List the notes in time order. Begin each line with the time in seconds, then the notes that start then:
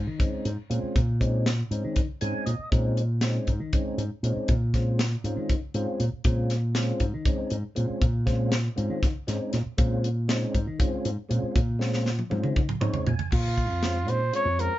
0.07 D#3
0.19 G#3 C4 C#4 D#4, kick, closed hi-hat
0.45 G#2, closed hi-hat
0.70 A#2 G#3 C4 C#4 F4, closed hi-hat
0.83 muted slap bass stroke
0.96 A#2, kick, closed hi-hat
1.20 G#3 C4 C#4 D#4, kick, closed hi-hat
1.46 snare, closed hi-hat
1.71 G#2 G#3 C4 C#4 D#4, closed hi-hat
1.84 D#3
1.96 kick, closed hi-hat
2.21 G#2 G#3 C4 C#4 D#4 G#5, closed hi-hat
2.46 A#2 D#5, closed hi-hat
2.59 muted slap bass stroke
2.71 A#2 G#3 C4 C#4 D#4, kick, closed hi-hat
2.97 closed hi-hat
3.21 G#3 C4 C#4 D#4, snare, closed hi-hat
3.47 G#2, kick, closed hi-hat
3.60 D#3
3.73 G#3 C4 C#4 D#4, kick, closed hi-hat
3.98 G#2, closed hi-hat
4.23 A#2 G#3 C4 C#4 D#4, closed hi-hat
4.36 muted slap bass stroke
4.48 A#2, kick, closed hi-hat
4.74 G#3 C4 C#4 F4, kick, snare, closed hi-hat
4.99 snare, closed hi-hat
5.24 G#2 G#3 C4 C#4 F4, closed hi-hat
5.36 D#3
5.49 kick, closed hi-hat
5.74 G#2 G#3 C4 C#4 F4, closed hi-hat
6.00 A#2, closed hi-hat
6.13 muted slap bass stroke
6.24 A#2 G#3 C4 C#4 F4, kick, closed hi-hat
6.50 snare, closed hi-hat
6.75 G#3 C4 C#4 F4, snare, closed hi-hat
7.00 G#2, kick, closed hi-hat
7.14 D#3
7.25 G#3 C4 C#4 D#4, kick, closed hi-hat
7.50 G#2, closed hi-hat
7.75 A#2 G#3 C4 C#4 F4, closed hi-hat
7.90 muted slap bass stroke
8.02 A#2, kick, closed hi-hat
8.26 G#3 C4 C#4 F4, kick, snare, closed hi-hat
8.52 snare, closed hi-hat
8.76 G#2 G#3 C4 C#4 F4, closed hi-hat
8.90 D#3
9.03 kick, snare, closed hi-hat
9.27 G#2 G#3 C4 C#4 D#4, snare, closed hi-hat
9.53 A#2, snare, closed hi-hat
9.66 muted slap bass stroke
9.77 A#2 G#3 C4 C#4 F4, kick, closed hi-hat
10.04 closed hi-hat
10.28 G#3 C4 C#4 D#4, snare, closed hi-hat
10.55 G#2, kick, closed hi-hat
10.67 D#3
10.79 G#3 C4 C#4 F4, kick, closed hi-hat
11.05 G#2, closed hi-hat
11.29 A#2 G#3 C4 C#4 F4, closed hi-hat
11.43 muted slap bass stroke
11.56 A#2, kick, closed hi-hat
11.79 G#3 C4 C#4 F4, snare
11.94 snare
12.06 snare
12.19 high tom
12.30 G#2 G#3 C4 C#4 F4, high tom
12.44 D#3, mid tom
12.56 kick, mid tom
12.69 mid tom
12.81 G#2 G#3 C4 C#4 D#4 C#5, mid tom
12.94 floor tom
13.07 A#2 G#5, floor tom
13.19 muted slap bass stroke, floor tom
13.32 A#2 F4, kick, crash
13.58 kick, closed hi-hat
13.70 F2
13.82 G#3 C4 C#4 F4, snare, closed hi-hat
14.06 A#2 G#3 C4 C#4 D#4 C5, closed hi-hat
14.33 G#3 C4 C#4 F4 C#5, closed hi-hat
14.45 F2
14.58 G#3 C4 C#4 F4 A#4, closed hi-hat